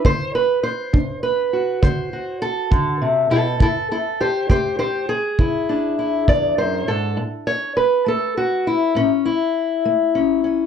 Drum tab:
BD |o--o--o--o--|o--o--o--o--|------------|